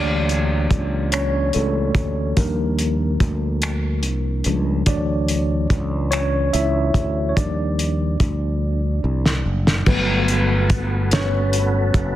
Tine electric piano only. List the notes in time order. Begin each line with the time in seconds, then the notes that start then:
Already playing: E3 F#3 D4 C#5 D5
1.13 C#4 C#5
1.54 A3 A4
2.37 F3 G3 A#3 D4 A#4
4.46 F3 G3 D4
4.87 E3 F#3 D4 C#5 D5
6.11 C#4 C#5
6.53 E4 E5
7.29 C#5
7.36 F3 G3 D4 D5
9.87 F#3 A3 B3 B4
11.13 C#4 C#5